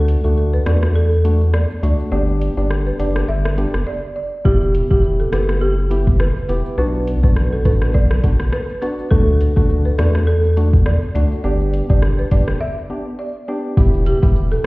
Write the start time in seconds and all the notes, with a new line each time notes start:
Already playing: D2 A3 D4 F#4
0.08 closed hi-hat, shaker
0.24 D2 A3 D4 F#4 A4, shaker
0.37 shaker
0.53 B4, shaker
0.66 E2 A3 D4 F#4 D5, cross-stick, closed hi-hat, shaker
0.83 cross-stick, shaker
0.95 A4, shaker
1.12 shaker
1.24 A3 D4 F#4, closed hi-hat, shaker
1.41 shaker
1.54 D5, cross-stick, shaker
1.70 shaker
1.83 D2 A3 D4 F#4 D5, closed hi-hat, shaker
1.99 shaker
2.12 G1 B3 D4 G4 D5, shaker
2.28 shaker
2.41 closed hi-hat, shaker
2.57 G1 B3 D4 G4 D5, shaker
2.70 cross-stick, shaker
2.87 B4, shaker
2.99 F#1 B3 D4 G4 D5, closed hi-hat, shaker
3.16 cross-stick, shaker
3.29 G1 E5, shaker
3.45 cross-stick, shaker
3.58 B3 D4 G4, closed hi-hat, shaker
3.74 F#1, cross-stick, shaker
3.87 D5
4.16 D5
4.45 E1 B3 E4 G4, kick, shaker
4.62 shaker
4.75 closed hi-hat, shaker
4.90 E1 B3 E4 G4, kick, shaker
5.03 shaker
5.20 A4, shaker
5.32 F#1 B3 E4 G4 B4, cross-stick, closed hi-hat, shaker
5.49 cross-stick, shaker
5.61 G4, shaker
5.78 shaker
5.90 B3 E4 G4, closed hi-hat, shaker
6.07 kick, shaker
6.20 B4, cross-stick, shaker
6.36 shaker
6.49 E1 B3 E4 G4 B4, closed hi-hat, shaker
6.65 shaker
6.78 B1 B3 D4 F#4 B4, shaker
6.94 shaker
7.07 closed hi-hat, shaker
7.23 B1 B3 D4 F#4 B4, kick, shaker
7.36 cross-stick, shaker
7.53 A4, shaker
7.65 A1 B3 D4 F#4 B4, kick, closed hi-hat, shaker
7.82 cross-stick, shaker
7.94 B1 D5, kick, shaker
8.11 cross-stick, shaker
8.23 B3 D4 F#4, kick, closed hi-hat, shaker
8.40 A1, cross-stick, shaker
8.53 B4, cross-stick, shaker
8.69 shaker
8.82 B3 D4 F#4 B4, closed hi-hat, shaker
8.99 shaker
9.11 D2 A3 D4 F#4 A4, kick, shaker
9.28 shaker
9.41 closed hi-hat, shaker
9.56 D2 A3 D4 F#4 A4, kick, shaker
9.69 shaker
9.85 B4, shaker
9.98 E2 A3 D4 F#4 D5, cross-stick, closed hi-hat, shaker
10.15 cross-stick, shaker
10.27 A4, shaker
10.44 shaker
10.57 A3 D4 F#4, closed hi-hat, shaker
10.73 kick, shaker
10.86 D5, cross-stick, shaker
11.02 shaker
11.15 D2 A3 D4 F#4 D5, closed hi-hat, shaker
11.32 shaker
11.44 G1 B3 D4 G4 D5, shaker
11.60 shaker
11.74 closed hi-hat, shaker
11.89 G1 B3 D4 G4 D5, kick, shaker
12.02 cross-stick, shaker
12.19 B4, shaker
12.31 F#1 B3 D4 G4 D5, kick, closed hi-hat, shaker
12.48 cross-stick, shaker
12.61 E5
12.90 B3 D4 G4
13.19 D5
13.48 B3 D4 G4 D5
13.77 E1 B3 E4 G4, kick, shaker, maracas
13.93 shaker, maracas
14.06 G4, closed hi-hat, shaker, maracas
14.22 E1 B3 E4 G4, kick, shaker, maracas
14.35 shaker, maracas
14.52 A4, maracas, shaker